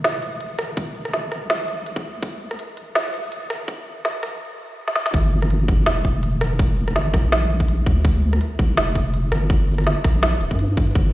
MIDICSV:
0, 0, Header, 1, 3, 480
1, 0, Start_track
1, 0, Key_signature, -2, "minor"
1, 0, Tempo, 363636
1, 1022, Time_signature, 4, 2, 24, 8
1, 14692, End_track
2, 0, Start_track
2, 0, Title_t, "Wobble bass"
2, 0, Program_c, 0, 39
2, 62, Note_on_c, 0, 29, 102
2, 1500, Note_on_c, 0, 31, 94
2, 1519, Note_off_c, 0, 29, 0
2, 1856, Note_off_c, 0, 31, 0
2, 1870, Note_on_c, 0, 34, 103
2, 2686, Note_off_c, 0, 34, 0
2, 2695, Note_on_c, 0, 38, 103
2, 3405, Note_off_c, 0, 38, 0
2, 3659, Note_on_c, 0, 34, 80
2, 3883, Note_off_c, 0, 34, 0
2, 3902, Note_on_c, 0, 29, 83
2, 4608, Note_off_c, 0, 29, 0
2, 4622, Note_on_c, 0, 31, 90
2, 5457, Note_off_c, 0, 31, 0
2, 5577, Note_on_c, 0, 34, 80
2, 5803, Note_off_c, 0, 34, 0
2, 6781, Note_on_c, 0, 31, 102
2, 7728, Note_off_c, 0, 31, 0
2, 7743, Note_on_c, 0, 29, 106
2, 9184, Note_on_c, 0, 31, 95
2, 9204, Note_off_c, 0, 29, 0
2, 9538, Note_off_c, 0, 31, 0
2, 9558, Note_on_c, 0, 34, 104
2, 10370, Note_off_c, 0, 34, 0
2, 10382, Note_on_c, 0, 38, 104
2, 11088, Note_off_c, 0, 38, 0
2, 11341, Note_on_c, 0, 34, 80
2, 11564, Note_off_c, 0, 34, 0
2, 11581, Note_on_c, 0, 29, 82
2, 12288, Note_off_c, 0, 29, 0
2, 12303, Note_on_c, 0, 31, 91
2, 13138, Note_off_c, 0, 31, 0
2, 13260, Note_on_c, 0, 34, 81
2, 13743, Note_on_c, 0, 26, 103
2, 13762, Note_off_c, 0, 34, 0
2, 13873, Note_on_c, 0, 43, 98
2, 13893, Note_off_c, 0, 26, 0
2, 14448, Note_off_c, 0, 43, 0
2, 14461, Note_on_c, 0, 31, 101
2, 14692, Note_off_c, 0, 31, 0
2, 14692, End_track
3, 0, Start_track
3, 0, Title_t, "Drums"
3, 58, Note_on_c, 9, 38, 119
3, 58, Note_on_c, 9, 42, 75
3, 190, Note_off_c, 9, 38, 0
3, 190, Note_off_c, 9, 42, 0
3, 296, Note_on_c, 9, 42, 62
3, 428, Note_off_c, 9, 42, 0
3, 535, Note_on_c, 9, 42, 77
3, 667, Note_off_c, 9, 42, 0
3, 773, Note_on_c, 9, 37, 77
3, 905, Note_off_c, 9, 37, 0
3, 1016, Note_on_c, 9, 42, 75
3, 1017, Note_on_c, 9, 36, 110
3, 1148, Note_off_c, 9, 42, 0
3, 1149, Note_off_c, 9, 36, 0
3, 1388, Note_on_c, 9, 37, 54
3, 1497, Note_on_c, 9, 38, 58
3, 1497, Note_on_c, 9, 42, 75
3, 1520, Note_off_c, 9, 37, 0
3, 1629, Note_off_c, 9, 38, 0
3, 1629, Note_off_c, 9, 42, 0
3, 1738, Note_on_c, 9, 37, 61
3, 1738, Note_on_c, 9, 42, 59
3, 1870, Note_off_c, 9, 37, 0
3, 1870, Note_off_c, 9, 42, 0
3, 1978, Note_on_c, 9, 38, 114
3, 1978, Note_on_c, 9, 42, 75
3, 2110, Note_off_c, 9, 38, 0
3, 2110, Note_off_c, 9, 42, 0
3, 2220, Note_on_c, 9, 42, 64
3, 2352, Note_off_c, 9, 42, 0
3, 2461, Note_on_c, 9, 42, 75
3, 2590, Note_on_c, 9, 36, 102
3, 2593, Note_off_c, 9, 42, 0
3, 2722, Note_off_c, 9, 36, 0
3, 2937, Note_on_c, 9, 36, 112
3, 2940, Note_on_c, 9, 42, 79
3, 3069, Note_off_c, 9, 36, 0
3, 3072, Note_off_c, 9, 42, 0
3, 3312, Note_on_c, 9, 37, 56
3, 3420, Note_on_c, 9, 42, 76
3, 3444, Note_off_c, 9, 37, 0
3, 3552, Note_off_c, 9, 42, 0
3, 3659, Note_on_c, 9, 42, 59
3, 3791, Note_off_c, 9, 42, 0
3, 3899, Note_on_c, 9, 38, 116
3, 4031, Note_off_c, 9, 38, 0
3, 4145, Note_on_c, 9, 42, 65
3, 4277, Note_off_c, 9, 42, 0
3, 4382, Note_on_c, 9, 42, 78
3, 4514, Note_off_c, 9, 42, 0
3, 4621, Note_on_c, 9, 37, 82
3, 4753, Note_off_c, 9, 37, 0
3, 4858, Note_on_c, 9, 36, 117
3, 4861, Note_on_c, 9, 42, 82
3, 4990, Note_off_c, 9, 36, 0
3, 4993, Note_off_c, 9, 42, 0
3, 5344, Note_on_c, 9, 37, 56
3, 5344, Note_on_c, 9, 38, 61
3, 5344, Note_on_c, 9, 42, 82
3, 5476, Note_off_c, 9, 37, 0
3, 5476, Note_off_c, 9, 38, 0
3, 5476, Note_off_c, 9, 42, 0
3, 5582, Note_on_c, 9, 37, 65
3, 5582, Note_on_c, 9, 42, 63
3, 5714, Note_off_c, 9, 37, 0
3, 5714, Note_off_c, 9, 42, 0
3, 6436, Note_on_c, 9, 38, 53
3, 6541, Note_off_c, 9, 38, 0
3, 6541, Note_on_c, 9, 38, 82
3, 6673, Note_off_c, 9, 38, 0
3, 6676, Note_on_c, 9, 38, 80
3, 6782, Note_on_c, 9, 36, 120
3, 6783, Note_on_c, 9, 42, 86
3, 6808, Note_off_c, 9, 38, 0
3, 6914, Note_off_c, 9, 36, 0
3, 6915, Note_off_c, 9, 42, 0
3, 7159, Note_on_c, 9, 37, 57
3, 7265, Note_on_c, 9, 42, 69
3, 7291, Note_off_c, 9, 37, 0
3, 7397, Note_off_c, 9, 42, 0
3, 7503, Note_on_c, 9, 36, 104
3, 7635, Note_off_c, 9, 36, 0
3, 7740, Note_on_c, 9, 38, 122
3, 7740, Note_on_c, 9, 42, 86
3, 7872, Note_off_c, 9, 38, 0
3, 7872, Note_off_c, 9, 42, 0
3, 7982, Note_on_c, 9, 36, 63
3, 7985, Note_on_c, 9, 42, 38
3, 8114, Note_off_c, 9, 36, 0
3, 8117, Note_off_c, 9, 42, 0
3, 8223, Note_on_c, 9, 42, 71
3, 8355, Note_off_c, 9, 42, 0
3, 8464, Note_on_c, 9, 37, 84
3, 8464, Note_on_c, 9, 42, 39
3, 8596, Note_off_c, 9, 37, 0
3, 8596, Note_off_c, 9, 42, 0
3, 8702, Note_on_c, 9, 42, 87
3, 8703, Note_on_c, 9, 36, 124
3, 8834, Note_off_c, 9, 42, 0
3, 8835, Note_off_c, 9, 36, 0
3, 9078, Note_on_c, 9, 37, 57
3, 9184, Note_on_c, 9, 38, 63
3, 9184, Note_on_c, 9, 42, 69
3, 9210, Note_off_c, 9, 37, 0
3, 9316, Note_off_c, 9, 38, 0
3, 9316, Note_off_c, 9, 42, 0
3, 9421, Note_on_c, 9, 36, 108
3, 9427, Note_on_c, 9, 37, 61
3, 9553, Note_off_c, 9, 36, 0
3, 9559, Note_off_c, 9, 37, 0
3, 9667, Note_on_c, 9, 38, 125
3, 9667, Note_on_c, 9, 42, 85
3, 9799, Note_off_c, 9, 38, 0
3, 9799, Note_off_c, 9, 42, 0
3, 9905, Note_on_c, 9, 42, 39
3, 10033, Note_on_c, 9, 36, 66
3, 10037, Note_off_c, 9, 42, 0
3, 10144, Note_on_c, 9, 42, 70
3, 10165, Note_off_c, 9, 36, 0
3, 10276, Note_off_c, 9, 42, 0
3, 10381, Note_on_c, 9, 36, 107
3, 10386, Note_on_c, 9, 42, 40
3, 10513, Note_off_c, 9, 36, 0
3, 10518, Note_off_c, 9, 42, 0
3, 10621, Note_on_c, 9, 36, 126
3, 10624, Note_on_c, 9, 42, 84
3, 10753, Note_off_c, 9, 36, 0
3, 10756, Note_off_c, 9, 42, 0
3, 10995, Note_on_c, 9, 37, 53
3, 11100, Note_on_c, 9, 42, 69
3, 11127, Note_off_c, 9, 37, 0
3, 11232, Note_off_c, 9, 42, 0
3, 11340, Note_on_c, 9, 36, 109
3, 11472, Note_off_c, 9, 36, 0
3, 11582, Note_on_c, 9, 38, 124
3, 11582, Note_on_c, 9, 42, 82
3, 11714, Note_off_c, 9, 38, 0
3, 11714, Note_off_c, 9, 42, 0
3, 11819, Note_on_c, 9, 36, 66
3, 11820, Note_on_c, 9, 42, 38
3, 11951, Note_off_c, 9, 36, 0
3, 11952, Note_off_c, 9, 42, 0
3, 12061, Note_on_c, 9, 42, 68
3, 12193, Note_off_c, 9, 42, 0
3, 12300, Note_on_c, 9, 37, 81
3, 12300, Note_on_c, 9, 42, 39
3, 12432, Note_off_c, 9, 37, 0
3, 12432, Note_off_c, 9, 42, 0
3, 12538, Note_on_c, 9, 36, 124
3, 12539, Note_on_c, 9, 42, 80
3, 12670, Note_off_c, 9, 36, 0
3, 12671, Note_off_c, 9, 42, 0
3, 12781, Note_on_c, 9, 42, 17
3, 12828, Note_off_c, 9, 42, 0
3, 12828, Note_on_c, 9, 42, 20
3, 12862, Note_off_c, 9, 42, 0
3, 12862, Note_on_c, 9, 42, 24
3, 12914, Note_off_c, 9, 42, 0
3, 12914, Note_on_c, 9, 37, 51
3, 12914, Note_on_c, 9, 42, 26
3, 12940, Note_off_c, 9, 42, 0
3, 12940, Note_on_c, 9, 42, 29
3, 12986, Note_off_c, 9, 42, 0
3, 12986, Note_on_c, 9, 42, 33
3, 13024, Note_off_c, 9, 42, 0
3, 13024, Note_on_c, 9, 38, 65
3, 13024, Note_on_c, 9, 42, 65
3, 13046, Note_off_c, 9, 37, 0
3, 13156, Note_off_c, 9, 38, 0
3, 13156, Note_off_c, 9, 42, 0
3, 13257, Note_on_c, 9, 37, 58
3, 13259, Note_on_c, 9, 36, 106
3, 13389, Note_off_c, 9, 37, 0
3, 13391, Note_off_c, 9, 36, 0
3, 13500, Note_on_c, 9, 38, 127
3, 13500, Note_on_c, 9, 42, 79
3, 13632, Note_off_c, 9, 38, 0
3, 13632, Note_off_c, 9, 42, 0
3, 13740, Note_on_c, 9, 42, 36
3, 13872, Note_off_c, 9, 42, 0
3, 13872, Note_on_c, 9, 36, 66
3, 13980, Note_on_c, 9, 42, 66
3, 14004, Note_off_c, 9, 36, 0
3, 14112, Note_off_c, 9, 42, 0
3, 14219, Note_on_c, 9, 36, 108
3, 14219, Note_on_c, 9, 42, 17
3, 14285, Note_off_c, 9, 42, 0
3, 14285, Note_on_c, 9, 42, 22
3, 14351, Note_off_c, 9, 36, 0
3, 14351, Note_off_c, 9, 42, 0
3, 14351, Note_on_c, 9, 42, 26
3, 14402, Note_off_c, 9, 42, 0
3, 14402, Note_on_c, 9, 42, 30
3, 14458, Note_off_c, 9, 42, 0
3, 14458, Note_on_c, 9, 42, 77
3, 14459, Note_on_c, 9, 36, 120
3, 14590, Note_off_c, 9, 42, 0
3, 14591, Note_off_c, 9, 36, 0
3, 14692, End_track
0, 0, End_of_file